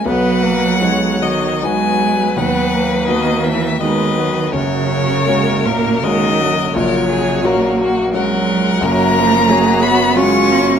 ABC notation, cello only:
X:1
M:3/4
L:1/8
Q:1/4=84
K:B
V:1 name="Cello" clef=bass
F,3 D, G,2 | F,2 D, E, D,2 | C,3 A,, D,2 | C,2 A,, z F,2 |
[K:F#] A,3 B, C2 |]